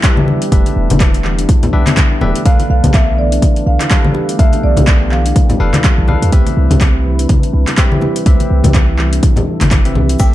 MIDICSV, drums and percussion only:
0, 0, Header, 1, 2, 480
1, 0, Start_track
1, 0, Tempo, 483871
1, 515, Time_signature, 4, 2, 24, 8
1, 10264, End_track
2, 0, Start_track
2, 0, Title_t, "Drums"
2, 35, Note_on_c, 9, 36, 120
2, 36, Note_on_c, 9, 39, 110
2, 36, Note_on_c, 9, 42, 60
2, 135, Note_off_c, 9, 36, 0
2, 135, Note_off_c, 9, 39, 0
2, 135, Note_off_c, 9, 42, 0
2, 170, Note_on_c, 9, 63, 122
2, 270, Note_off_c, 9, 63, 0
2, 277, Note_on_c, 9, 62, 51
2, 277, Note_on_c, 9, 63, 74
2, 376, Note_off_c, 9, 62, 0
2, 376, Note_off_c, 9, 63, 0
2, 414, Note_on_c, 9, 42, 45
2, 513, Note_off_c, 9, 42, 0
2, 516, Note_on_c, 9, 36, 122
2, 516, Note_on_c, 9, 42, 54
2, 615, Note_off_c, 9, 36, 0
2, 615, Note_off_c, 9, 42, 0
2, 656, Note_on_c, 9, 42, 33
2, 664, Note_on_c, 9, 62, 49
2, 755, Note_off_c, 9, 42, 0
2, 763, Note_off_c, 9, 62, 0
2, 895, Note_on_c, 9, 42, 44
2, 900, Note_on_c, 9, 63, 111
2, 904, Note_on_c, 9, 64, 84
2, 994, Note_off_c, 9, 42, 0
2, 996, Note_off_c, 9, 63, 0
2, 996, Note_on_c, 9, 36, 127
2, 996, Note_on_c, 9, 39, 106
2, 996, Note_on_c, 9, 42, 56
2, 996, Note_on_c, 9, 62, 42
2, 996, Note_on_c, 9, 63, 60
2, 1003, Note_off_c, 9, 64, 0
2, 1095, Note_off_c, 9, 36, 0
2, 1095, Note_off_c, 9, 39, 0
2, 1095, Note_off_c, 9, 42, 0
2, 1095, Note_off_c, 9, 62, 0
2, 1096, Note_off_c, 9, 63, 0
2, 1135, Note_on_c, 9, 42, 31
2, 1234, Note_off_c, 9, 42, 0
2, 1235, Note_on_c, 9, 39, 47
2, 1335, Note_off_c, 9, 39, 0
2, 1375, Note_on_c, 9, 42, 44
2, 1474, Note_off_c, 9, 42, 0
2, 1476, Note_on_c, 9, 36, 124
2, 1476, Note_on_c, 9, 42, 54
2, 1479, Note_on_c, 9, 62, 46
2, 1575, Note_off_c, 9, 36, 0
2, 1575, Note_off_c, 9, 42, 0
2, 1578, Note_off_c, 9, 62, 0
2, 1616, Note_on_c, 9, 42, 30
2, 1617, Note_on_c, 9, 64, 109
2, 1715, Note_off_c, 9, 42, 0
2, 1716, Note_off_c, 9, 64, 0
2, 1851, Note_on_c, 9, 63, 106
2, 1855, Note_on_c, 9, 39, 65
2, 1855, Note_on_c, 9, 42, 44
2, 1858, Note_on_c, 9, 62, 41
2, 1950, Note_off_c, 9, 63, 0
2, 1953, Note_on_c, 9, 63, 67
2, 1954, Note_off_c, 9, 39, 0
2, 1954, Note_off_c, 9, 42, 0
2, 1956, Note_on_c, 9, 36, 122
2, 1957, Note_off_c, 9, 62, 0
2, 1957, Note_on_c, 9, 39, 105
2, 1957, Note_on_c, 9, 42, 56
2, 2052, Note_off_c, 9, 63, 0
2, 2055, Note_off_c, 9, 36, 0
2, 2056, Note_off_c, 9, 39, 0
2, 2056, Note_off_c, 9, 42, 0
2, 2193, Note_on_c, 9, 63, 66
2, 2196, Note_on_c, 9, 62, 53
2, 2200, Note_on_c, 9, 64, 85
2, 2292, Note_off_c, 9, 63, 0
2, 2295, Note_off_c, 9, 62, 0
2, 2299, Note_off_c, 9, 64, 0
2, 2336, Note_on_c, 9, 42, 45
2, 2435, Note_off_c, 9, 42, 0
2, 2436, Note_on_c, 9, 36, 120
2, 2436, Note_on_c, 9, 42, 55
2, 2535, Note_off_c, 9, 36, 0
2, 2535, Note_off_c, 9, 42, 0
2, 2575, Note_on_c, 9, 42, 31
2, 2575, Note_on_c, 9, 62, 53
2, 2675, Note_off_c, 9, 42, 0
2, 2675, Note_off_c, 9, 62, 0
2, 2815, Note_on_c, 9, 64, 91
2, 2816, Note_on_c, 9, 42, 44
2, 2817, Note_on_c, 9, 63, 102
2, 2910, Note_on_c, 9, 62, 39
2, 2914, Note_off_c, 9, 64, 0
2, 2915, Note_off_c, 9, 42, 0
2, 2916, Note_off_c, 9, 63, 0
2, 2916, Note_on_c, 9, 36, 127
2, 2916, Note_on_c, 9, 39, 103
2, 2916, Note_on_c, 9, 42, 52
2, 3009, Note_off_c, 9, 62, 0
2, 3015, Note_off_c, 9, 36, 0
2, 3016, Note_off_c, 9, 39, 0
2, 3016, Note_off_c, 9, 42, 0
2, 3295, Note_on_c, 9, 42, 44
2, 3394, Note_off_c, 9, 42, 0
2, 3394, Note_on_c, 9, 63, 86
2, 3396, Note_on_c, 9, 36, 115
2, 3397, Note_on_c, 9, 42, 56
2, 3398, Note_on_c, 9, 62, 50
2, 3494, Note_off_c, 9, 63, 0
2, 3495, Note_off_c, 9, 36, 0
2, 3496, Note_off_c, 9, 42, 0
2, 3498, Note_off_c, 9, 62, 0
2, 3535, Note_on_c, 9, 42, 29
2, 3634, Note_off_c, 9, 42, 0
2, 3775, Note_on_c, 9, 39, 62
2, 3775, Note_on_c, 9, 42, 44
2, 3786, Note_on_c, 9, 62, 36
2, 3874, Note_off_c, 9, 39, 0
2, 3874, Note_off_c, 9, 42, 0
2, 3876, Note_on_c, 9, 36, 121
2, 3876, Note_on_c, 9, 39, 106
2, 3876, Note_on_c, 9, 42, 54
2, 3885, Note_off_c, 9, 62, 0
2, 3975, Note_off_c, 9, 36, 0
2, 3975, Note_off_c, 9, 39, 0
2, 3975, Note_off_c, 9, 42, 0
2, 4014, Note_on_c, 9, 63, 106
2, 4108, Note_off_c, 9, 63, 0
2, 4108, Note_on_c, 9, 63, 61
2, 4112, Note_on_c, 9, 62, 49
2, 4207, Note_off_c, 9, 63, 0
2, 4211, Note_off_c, 9, 62, 0
2, 4255, Note_on_c, 9, 42, 43
2, 4354, Note_off_c, 9, 42, 0
2, 4355, Note_on_c, 9, 36, 113
2, 4357, Note_on_c, 9, 42, 54
2, 4455, Note_off_c, 9, 36, 0
2, 4456, Note_off_c, 9, 42, 0
2, 4491, Note_on_c, 9, 62, 56
2, 4495, Note_on_c, 9, 42, 31
2, 4590, Note_off_c, 9, 62, 0
2, 4595, Note_off_c, 9, 42, 0
2, 4729, Note_on_c, 9, 63, 111
2, 4733, Note_on_c, 9, 42, 43
2, 4735, Note_on_c, 9, 64, 94
2, 4828, Note_off_c, 9, 63, 0
2, 4833, Note_off_c, 9, 42, 0
2, 4835, Note_off_c, 9, 64, 0
2, 4835, Note_on_c, 9, 36, 117
2, 4835, Note_on_c, 9, 39, 101
2, 4835, Note_on_c, 9, 42, 53
2, 4840, Note_on_c, 9, 62, 40
2, 4934, Note_off_c, 9, 36, 0
2, 4934, Note_off_c, 9, 39, 0
2, 4934, Note_off_c, 9, 42, 0
2, 4939, Note_off_c, 9, 62, 0
2, 5075, Note_on_c, 9, 39, 50
2, 5174, Note_off_c, 9, 39, 0
2, 5215, Note_on_c, 9, 42, 43
2, 5314, Note_off_c, 9, 42, 0
2, 5315, Note_on_c, 9, 36, 119
2, 5315, Note_on_c, 9, 42, 53
2, 5315, Note_on_c, 9, 62, 47
2, 5414, Note_off_c, 9, 36, 0
2, 5414, Note_off_c, 9, 42, 0
2, 5414, Note_off_c, 9, 62, 0
2, 5451, Note_on_c, 9, 64, 96
2, 5454, Note_on_c, 9, 42, 29
2, 5551, Note_off_c, 9, 64, 0
2, 5554, Note_off_c, 9, 42, 0
2, 5688, Note_on_c, 9, 63, 112
2, 5691, Note_on_c, 9, 62, 43
2, 5694, Note_on_c, 9, 39, 60
2, 5694, Note_on_c, 9, 42, 43
2, 5787, Note_off_c, 9, 63, 0
2, 5790, Note_off_c, 9, 62, 0
2, 5794, Note_off_c, 9, 39, 0
2, 5794, Note_off_c, 9, 42, 0
2, 5795, Note_on_c, 9, 36, 120
2, 5795, Note_on_c, 9, 39, 104
2, 5795, Note_on_c, 9, 42, 53
2, 5894, Note_off_c, 9, 36, 0
2, 5894, Note_off_c, 9, 39, 0
2, 5894, Note_off_c, 9, 42, 0
2, 6027, Note_on_c, 9, 62, 51
2, 6035, Note_on_c, 9, 64, 71
2, 6038, Note_on_c, 9, 63, 70
2, 6126, Note_off_c, 9, 62, 0
2, 6134, Note_off_c, 9, 64, 0
2, 6137, Note_off_c, 9, 63, 0
2, 6175, Note_on_c, 9, 42, 43
2, 6274, Note_off_c, 9, 42, 0
2, 6274, Note_on_c, 9, 36, 107
2, 6274, Note_on_c, 9, 42, 58
2, 6373, Note_off_c, 9, 42, 0
2, 6374, Note_off_c, 9, 36, 0
2, 6414, Note_on_c, 9, 42, 31
2, 6414, Note_on_c, 9, 62, 55
2, 6513, Note_off_c, 9, 42, 0
2, 6513, Note_off_c, 9, 62, 0
2, 6653, Note_on_c, 9, 63, 105
2, 6653, Note_on_c, 9, 64, 93
2, 6655, Note_on_c, 9, 42, 44
2, 6747, Note_on_c, 9, 62, 40
2, 6752, Note_off_c, 9, 63, 0
2, 6752, Note_off_c, 9, 64, 0
2, 6754, Note_off_c, 9, 42, 0
2, 6754, Note_on_c, 9, 36, 120
2, 6754, Note_on_c, 9, 39, 108
2, 6754, Note_on_c, 9, 42, 53
2, 6846, Note_off_c, 9, 62, 0
2, 6854, Note_off_c, 9, 36, 0
2, 6854, Note_off_c, 9, 39, 0
2, 6854, Note_off_c, 9, 42, 0
2, 7134, Note_on_c, 9, 42, 46
2, 7233, Note_off_c, 9, 42, 0
2, 7234, Note_on_c, 9, 36, 109
2, 7234, Note_on_c, 9, 42, 57
2, 7237, Note_on_c, 9, 62, 51
2, 7240, Note_on_c, 9, 63, 86
2, 7333, Note_off_c, 9, 42, 0
2, 7334, Note_off_c, 9, 36, 0
2, 7337, Note_off_c, 9, 62, 0
2, 7339, Note_off_c, 9, 63, 0
2, 7374, Note_on_c, 9, 42, 30
2, 7473, Note_off_c, 9, 42, 0
2, 7610, Note_on_c, 9, 62, 37
2, 7613, Note_on_c, 9, 39, 59
2, 7613, Note_on_c, 9, 42, 46
2, 7709, Note_off_c, 9, 62, 0
2, 7712, Note_off_c, 9, 39, 0
2, 7712, Note_off_c, 9, 42, 0
2, 7714, Note_on_c, 9, 39, 104
2, 7714, Note_on_c, 9, 42, 56
2, 7715, Note_on_c, 9, 36, 110
2, 7813, Note_off_c, 9, 39, 0
2, 7813, Note_off_c, 9, 42, 0
2, 7814, Note_off_c, 9, 36, 0
2, 7854, Note_on_c, 9, 63, 96
2, 7950, Note_off_c, 9, 63, 0
2, 7950, Note_on_c, 9, 63, 67
2, 7956, Note_on_c, 9, 62, 59
2, 8050, Note_off_c, 9, 63, 0
2, 8055, Note_off_c, 9, 62, 0
2, 8094, Note_on_c, 9, 42, 44
2, 8193, Note_off_c, 9, 42, 0
2, 8194, Note_on_c, 9, 42, 59
2, 8195, Note_on_c, 9, 36, 117
2, 8293, Note_off_c, 9, 42, 0
2, 8294, Note_off_c, 9, 36, 0
2, 8334, Note_on_c, 9, 42, 33
2, 8335, Note_on_c, 9, 62, 50
2, 8433, Note_off_c, 9, 42, 0
2, 8434, Note_off_c, 9, 62, 0
2, 8570, Note_on_c, 9, 63, 104
2, 8570, Note_on_c, 9, 64, 99
2, 8574, Note_on_c, 9, 42, 47
2, 8669, Note_off_c, 9, 64, 0
2, 8670, Note_off_c, 9, 63, 0
2, 8671, Note_on_c, 9, 63, 57
2, 8673, Note_off_c, 9, 42, 0
2, 8673, Note_on_c, 9, 62, 43
2, 8675, Note_on_c, 9, 36, 118
2, 8675, Note_on_c, 9, 39, 105
2, 8675, Note_on_c, 9, 42, 57
2, 8770, Note_off_c, 9, 63, 0
2, 8772, Note_off_c, 9, 62, 0
2, 8774, Note_off_c, 9, 36, 0
2, 8775, Note_off_c, 9, 39, 0
2, 8775, Note_off_c, 9, 42, 0
2, 8915, Note_on_c, 9, 39, 54
2, 9014, Note_off_c, 9, 39, 0
2, 9054, Note_on_c, 9, 42, 45
2, 9153, Note_off_c, 9, 42, 0
2, 9154, Note_on_c, 9, 42, 57
2, 9154, Note_on_c, 9, 62, 53
2, 9155, Note_on_c, 9, 36, 116
2, 9253, Note_off_c, 9, 62, 0
2, 9254, Note_off_c, 9, 36, 0
2, 9254, Note_off_c, 9, 42, 0
2, 9288, Note_on_c, 9, 64, 103
2, 9293, Note_on_c, 9, 42, 30
2, 9387, Note_off_c, 9, 64, 0
2, 9393, Note_off_c, 9, 42, 0
2, 9531, Note_on_c, 9, 62, 44
2, 9534, Note_on_c, 9, 39, 60
2, 9534, Note_on_c, 9, 42, 48
2, 9538, Note_on_c, 9, 63, 99
2, 9630, Note_off_c, 9, 62, 0
2, 9634, Note_off_c, 9, 39, 0
2, 9634, Note_off_c, 9, 42, 0
2, 9635, Note_on_c, 9, 36, 110
2, 9635, Note_on_c, 9, 39, 107
2, 9635, Note_on_c, 9, 42, 57
2, 9637, Note_off_c, 9, 63, 0
2, 9734, Note_off_c, 9, 36, 0
2, 9734, Note_off_c, 9, 39, 0
2, 9734, Note_off_c, 9, 42, 0
2, 9774, Note_on_c, 9, 42, 33
2, 9873, Note_off_c, 9, 42, 0
2, 9874, Note_on_c, 9, 63, 61
2, 9875, Note_on_c, 9, 62, 57
2, 9878, Note_on_c, 9, 64, 80
2, 9973, Note_off_c, 9, 63, 0
2, 9974, Note_off_c, 9, 62, 0
2, 9977, Note_off_c, 9, 64, 0
2, 10013, Note_on_c, 9, 42, 45
2, 10113, Note_off_c, 9, 42, 0
2, 10114, Note_on_c, 9, 42, 58
2, 10114, Note_on_c, 9, 82, 40
2, 10115, Note_on_c, 9, 36, 117
2, 10213, Note_off_c, 9, 42, 0
2, 10213, Note_off_c, 9, 82, 0
2, 10214, Note_off_c, 9, 36, 0
2, 10264, End_track
0, 0, End_of_file